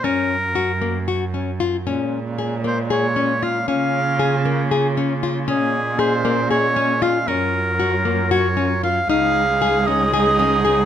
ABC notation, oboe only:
X:1
M:7/8
L:1/8
Q:1/4=116
K:Db
V:1 name="Oboe"
B4 z3 | z3 c d2 f | f4 z3 | A2 c2 d2 f |
B4 d2 f | f3 e e3 |]